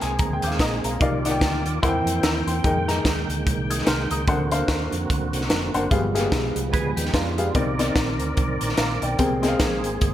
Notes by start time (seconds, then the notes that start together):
Already playing: G#3 A#3 C4 G#4
0.01 C2 G#5, closed hi-hat
0.19 D2 A#5, kick, closed hi-hat
0.33 G5
0.42 D#2 D6 G6, closed hi-hat
0.47 F5
0.51 snare
0.59 A#1 D#5 A#5 D#6, kick, snare, closed hi-hat
0.84 B1 F5 A#5, closed hi-hat
0.99 C2 C3 D#3 D#4 F4 A#4 D5 F5, kick, closed hi-hat
1.25 D#4 A#4 D5 F#5, snare, closed hi-hat
1.30 G5
1.41 D2, kick, snare, closed hi-hat
1.65 D#2, closed hi-hat
1.82 E2 E3 A#3 C4 E4 A#4 C5 F#5 G5, kick, closed hi-hat
1.88 G5
2.05 F2, closed hi-hat
2.23 D#2 A#5 E6, snare, closed hi-hat
2.47 E2 G5 C6, closed hi-hat
2.64 F2 D#3 G#3 A#3 D#4 G#4 A#4 G5, kick, closed hi-hat
2.88 D#4 G#4 A#4 A#5, snare, closed hi-hat
3.05 D#2, kick, snare, closed hi-hat
3.28 D2, closed hi-hat
3.46 C2, kick, closed hi-hat
3.70 D#6 G#6, closed hi-hat
3.78 snare
3.87 C2 C6 F6, snare, closed hi-hat
4.11 C#2 A#5 D#6, closed hi-hat
4.27 D2 D3 A#3 C4 D4 F#4 A#4 C5 F#5, kick, closed hi-hat
4.52 D4 A#4 C5 F5, closed hi-hat
4.68 D#2, kick, snare, closed hi-hat
4.92 F2, closed hi-hat
5.10 D2, kick, closed hi-hat
5.33 C2, closed hi-hat
5.41 snare
5.50 F1, snare, closed hi-hat
5.74 F#1 D4 A#4 C5 F#5, closed hi-hat
5.91 G1 G2 F3 G3 G#3 B3 G4 G#4 F5, kick, closed hi-hat
6.15 A#3 G4 G#4 F5, snare, closed hi-hat
6.20 B3
6.32 B1, kick, snare, closed hi-hat
6.56 C2, closed hi-hat
6.73 D2 G#4 B4, kick, closed hi-hat
6.96 D#2 G4, closed hi-hat
7.05 snare
7.14 F2 D4 F4, kick, snare, closed hi-hat
7.38 B3 G4 G#4 F5, closed hi-hat
7.55 C2 C3 D#3 C4 D#4 A#4 D5, kick, closed hi-hat
7.79 C4 D#4 A#4 D5, snare, closed hi-hat
7.96 A#1, kick, snare, closed hi-hat
8.20 D2, closed hi-hat
8.37 C2, kick, closed hi-hat
8.61 A#1, closed hi-hat
8.69 snare
8.77 A#1 F5 A#5, snare, closed hi-hat
9.02 B1 D5 G5, closed hi-hat
9.18 C2 C3 G#3 A#3 C4 G#4 A#4 G5, kick, closed hi-hat
9.43 C4 G#4 A#4 D#5, snare, closed hi-hat
9.48 F5
9.59 A#1, kick, snare, closed hi-hat
9.84 G#1, closed hi-hat
10.01 G1, kick, closed hi-hat